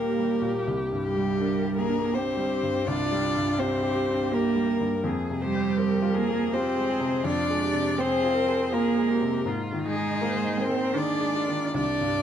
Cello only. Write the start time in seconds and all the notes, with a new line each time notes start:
Already playing: A#3
1.02 G3
1.78 A#3
2.15 C4
2.88 D4
3.58 C4
4.31 A#3
5.41 G3
6.16 A#3
6.54 C4
7.26 D4
7.98 C4
8.72 A#3
9.84 G#3
10.57 C4
10.94 D4
11.73 D4